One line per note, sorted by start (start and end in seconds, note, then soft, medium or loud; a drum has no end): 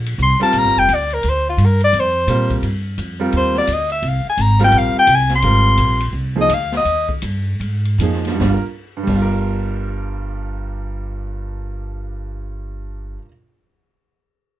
0.00 0.17 A#1 medium
0.06 ride medium
0.18 0.39 C2 medium
0.18 hi-hat pedal medium
0.23 0.41 C6 medium
0.40 0.85 G3 medium
0.40 0.86 C4 medium
0.40 0.86 F4 medium
0.40 0.86 A#4 medium
0.40 0.60 A5 medium
0.40 ride soft
0.53 0.64 A#1 medium
0.53 ride medium
0.59 0.81 A#5 loud
0.64 0.76 G1 medium
0.77 0.88 F1 medium
0.77 0.96 G5 medium
0.89 1.23 D2 medium
0.89 hi-hat pedal medium
0.89 ride medium
0.95 1.15 D5 medium
1.10 1.31 A#4 medium
1.10 ride soft
1.23 1.57 D2 medium
1.23 ride medium
1.29 1.49 C5 medium
1.50 1.67 F4 medium
1.57 1.92 G2 medium
1.57 hi-hat pedal soft
1.57 ride medium
1.66 1.84 A#4 medium
1.80 2.01 D5 loud
1.80 ride soft
1.93 2.27 F2 medium
1.93 ride medium
2.00 2.54 C5 medium
2.27 2.62 A#2 medium
2.27 2.63 G3 medium
2.27 2.63 C4 soft
2.27 2.64 F4 soft
2.27 2.64 A#4 medium
2.27 hi-hat pedal medium
2.27 ride medium
2.50 kick medium
2.50 ride soft
2.63 2.97 G2 medium
2.63 ride medium
2.98 3.32 F2 medium
2.98 hi-hat pedal medium
2.98 ride medium
3.20 3.65 G3 medium
3.20 3.65 C4 medium
3.20 3.66 F4 medium
3.20 3.66 A#4 medium
3.32 3.67 D#2 medium
3.32 ride medium
3.37 3.56 C5 medium
3.55 3.75 D5 medium
3.55 snare soft
3.67 4.02 D2 medium
3.67 hi-hat pedal medium
3.67 ride medium
3.73 3.91 D#5 medium
3.90 4.10 E5 medium
3.90 ride soft
4.02 4.23 C2 medium
4.02 ride medium
4.08 4.28 F5 medium
4.26 4.43 G#5 medium
4.26 muted upright bass stroke soft
4.37 4.72 G#1 medium
4.37 hi-hat pedal medium
4.37 ride medium
4.42 4.62 A#5 loud
4.59 5.05 G3 medium
4.59 5.05 C4 medium
4.59 5.06 F4 medium
4.59 5.06 A#4 medium
4.59 snare soft
4.59 ride soft
4.64 4.80 G5 medium
4.72 4.94 A#1 medium
4.72 ride medium
4.78 4.98 F5 medium
4.95 muted upright bass stroke soft
4.99 5.17 G5 loud
5.07 5.42 C2 medium
5.07 hi-hat pedal medium
5.07 ride medium
5.15 5.34 G#5 medium
5.30 snare soft
5.30 ride soft
5.35 6.12 C6 medium
5.42 5.77 G#1 medium
5.42 5.96 G3 medium
5.42 5.96 C4 medium
5.42 5.97 F4 medium
5.42 5.97 A#4 medium
5.42 ride medium
5.77 6.12 A#1 medium
5.77 hi-hat pedal medium
5.77 ride medium
6.00 ride medium
6.13 6.48 C2 medium
6.36 6.48 F3 medium
6.36 6.48 A#3 medium
6.36 6.48 D#4 medium
6.36 6.49 G#4 medium
6.41 6.56 D#5 medium
6.49 6.85 D2 medium
6.49 hi-hat pedal medium
6.49 ride medium
6.54 6.75 F5 loud
6.72 snare soft
6.77 7.09 D#5 medium
6.85 7.22 D#2 medium
6.85 ride medium
7.09 kick medium
7.22 7.59 G2 medium
7.22 hi-hat pedal medium
7.22 ride medium
7.60 7.98 G#2 medium
7.60 ride medium
7.85 ride soft
7.98 8.39 F2 medium
7.98 8.41 F3 medium
7.98 8.41 A#3 soft
7.98 8.42 D#4 soft
7.98 hi-hat pedal medium
7.98 ride medium
8.02 8.42 G#4 medium
8.13 snare soft
8.25 snare soft
8.25 ride soft
8.29 8.51 G2 medium
8.35 8.54 G3 medium
8.40 8.55 G1 medium
8.40 8.57 D4 medium
8.40 kick medium
8.40 snare medium
8.47 8.60 F4 medium
8.54 8.63 A#4 medium
8.97 13.15 G2 medium
9.03 13.16 G1 medium
9.03 13.18 G3 medium
9.07 13.21 D4 medium
9.07 kick soft
9.07 crash medium
9.15 13.24 F4 medium
9.22 13.27 A#4 medium